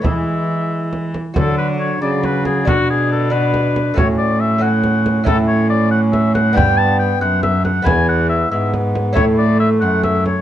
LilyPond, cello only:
\new Staff \with { instrumentName = "Cello" } { \clef bass \time 6/8 \key e \mixolydian \tempo 4. = 92 e2~ e8 r8 | d4. cis4. | b,2. | a,2. |
a,2. | g,4. fis,4. | e,4. gis,4. | a,4. fis,4. | }